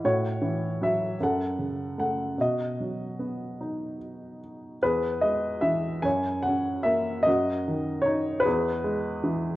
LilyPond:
<<
  \new Staff \with { instrumentName = "Upright piano" } { \time 6/8 \key b \mixolydian \tempo 4. = 50 << { cis''4 e''8 fis''4 fis''8 | dis''2 r4 | \key e \lydian b'8 dis''8 e''8 gis''8 fis''8 e''8 | dis''4 cis''8 b'4 r8 | } \\ { fis'4. a'4. | fis'2 r4 | gis'4. cis''4. | fis'4. gis'4. | } >> }
  \new Staff \with { instrumentName = "Upright piano" } { \clef bass \time 6/8 \key b \mixolydian a,8 e8 fis8 fis,8 cis8 a8 | b,8 fis8 b8 dis'4. | \key e \lydian e,8 gis8 e8 fis,8 cis'8 ais8 | fis,8 dis8 dis'8 e,8 gis8 e8 | }
>>